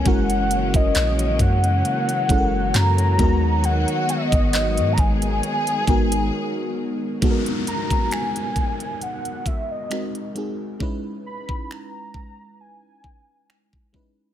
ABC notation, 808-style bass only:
X:1
M:4/4
L:1/16
Q:"Swing 16ths" 1/4=67
K:G#m
V:1 name="808-style bass" clef=bass
F,,,3 F,,, A,,,2 F,,2 z2 F,,,2 F,,2 D,,2- | D,, z2 G,,,2 G,, G,,,2 z2 G,,,2 z4 | z16 | z16 |]